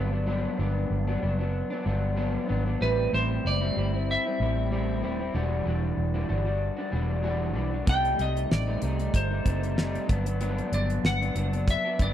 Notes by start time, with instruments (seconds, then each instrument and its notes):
Already playing: fingered electric bass G1, clean electric guitar G2 F#3 B3
0.11 clean electric guitar F#3 B3 D4
0.26 clean electric guitar G2 F#3 B3 D4
0.58 fingered electric bass G1, clean electric guitar G2 F#3 B3 D4
0.90 fingered electric bass G1
1.07 clean electric guitar G2 F#3 B3 D4
1.22 fingered electric bass F#1, clean electric guitar G2 F#3 B3 D4
1.39 clean electric guitar F#3 B3 D4
1.70 clean electric guitar F#3 B3 D4
1.84 fingered electric bass G1, clean electric guitar G2 F#3 B3 D4
2.16 clean electric guitar G2 F#3 B3 D4
2.47 fingered electric bass G#1, clean electric guitar G2 F#3 B3 D4
2.65 clean electric guitar F#3 B3 D4
2.80 fingered electric bass A1, clean electric guitar A2 G3 C4 E4, electric slide guitar B4
3.11 fingered electric bass A1, clean electric guitar A2 G3 C4 E4, electric slide guitar C5
3.45 fingered electric bass F#1, electric slide guitar D5
3.61 clean electric guitar A2 G3 C4 E4
3.76 fingered electric bass G1, clean electric guitar A2 G3 C4 E4
3.93 clean electric guitar G3 C4 E4
4.11 electric slide guitar E5
4.25 clean electric guitar G3 C4 E4
4.39 fingered electric bass A1, clean electric guitar A2 G3 C4 E4
4.71 clean electric guitar A2 G3 C4 E4
5.02 fingered electric bass D#1, clean electric guitar A2 G3 C4 E4
5.19 clean electric guitar G3 C4 E4
5.34 fingered electric bass E1, clean electric guitar E3 G3 D4 F#4
5.65 fingered electric bass E1, clean electric guitar E3 G3 D4 F#4
5.97 fingered electric bass E1
6.14 clean electric guitar E3 G3 D4 F#4
6.27 fingered electric bass G1, clean electric guitar E3 G3 D4 F#4
6.45 clean electric guitar G3 D4 F#4
6.77 clean electric guitar G3 D4 F#4
6.91 fingered electric bass E1, clean electric guitar E3 G3 D4 F#4
7.22 clean electric guitar E3 G3 D4 F#4
7.54 fingered electric bass B1, clean electric guitar E3 G3 D4 F#4
7.72 clean electric guitar G3 D4 F#4
7.86 fingered electric bass C2, clean electric guitar C3 G3 A3 D#4, electric slide guitar G5, kick, closed hi-hat
8.05 closed hi-hat
8.17 fingered electric bass C2, clean electric guitar C3 G3 A3 D#4, closed hi-hat
8.21 electric slide guitar D#5
8.37 closed hi-hat
8.51 fingered electric bass A1, electric slide guitar D5, snare
8.67 clean electric guitar C3 G3 A3 D#4
8.81 fingered electric bass C2, clean electric guitar C3 G3 A3 D#4, closed hi-hat
8.99 clean electric guitar G3 A3 D#4, closed hi-hat
9.14 fingered electric bass G1, electric slide guitar C5, kick, snare, closed hi-hat
9.31 clean electric guitar G3 A3 D#4
9.44 fingered electric bass F#1, clean electric guitar C3 G3 A3 D#4, kick, closed hi-hat
9.63 closed hi-hat
9.76 clean electric guitar C3 G3 A3 D#4, snare
9.95 closed hi-hat
10.08 fingered electric bass G1, clean electric guitar G2 F#3 B3 D4, kick, closed hi-hat
10.26 clean electric guitar F#3 B3 D4, closed hi-hat
10.40 clean electric guitar G2 F#3 B3 D4, closed hi-hat
10.58 closed hi-hat
10.71 fingered electric bass G1, clean electric guitar G2 F#3 B3 D4, electric slide guitar D5, closed hi-hat
10.90 closed hi-hat
11.04 fingered electric bass G1, electric slide guitar F#5, snare
11.20 clean electric guitar G2 F#3 B3 D4, closed hi-hat
11.35 fingered electric bass F#1, clean electric guitar G2 F#3 B3 D4, closed hi-hat
11.53 clean electric guitar F#3 B3 D4, closed hi-hat
11.68 electric slide guitar E5, kick, snare, closed hi-hat
11.85 clean electric guitar F#3 B3 D4
11.98 fingered electric bass G1, clean electric guitar G2 F#3 B3 D4, kick, closed hi-hat
12.02 electric slide guitar D5